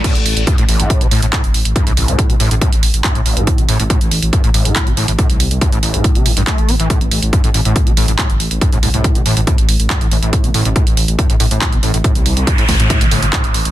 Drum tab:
CC |x---------------|----------------|----------------|----------------|
HH |xxoxxxoxxxoxxxox|xxoxxxoxxxoxxxox|xxoxxxoxxxoxxxox|xxoxxxoxxxoxxxox|
CP |------------x---|------------x---|------------x---|------------x---|
BD |o---o---o---o---|o---o---o---o---|o---o---o---o---|o---o---o---o---|

CC |----------------|----------------|----------------|----------------|
HH |xxoxxxoxxxoxxxox|xxoxxxoxxxoxxxox|xxoxxxoxxxoxxxox|xxoxxxoxxxoxxxox|
CP |------------x---|------------x---|------------x---|------------x---|
BD |o---o---o---o---|o---o---o---o---|o---o---o---o---|o---o-o-o---o---|